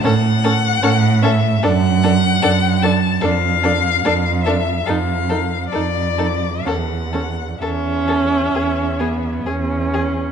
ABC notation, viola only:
X:1
M:4/4
L:1/8
Q:1/4=73
K:A
V:1 name="Viola"
C C C C D D D D | D D D D _E E E E | C C C3 B, C2 |]